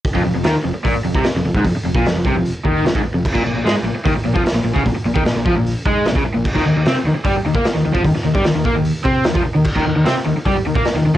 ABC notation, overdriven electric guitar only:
X:1
M:4/4
L:1/16
Q:1/4=150
K:Eblyd
V:1 name="Overdriven electric guitar" clef=bass
z F,, F,, F,, E, z F,, z B,, z F,, C, z F,, F,, _A,, | F,, z F,, B,, F,, F,, C, F,,2 z E,2 F,, _A,, z F,, | z B,, B,, B,, _A, z B,, z E, z B,, F, z B,, B,, _D, | B,, z B,, E, B,, B,, F, B,,2 z _A,2 B,, _D, z B,, |
z E, E, E, C z E, z G, z E, B, z E, E, F, | E, z E, G, E, E, B, E,2 z C2 E, F, z E, | z E, E, E, C z E, z G, z E, B, z E, E, z |]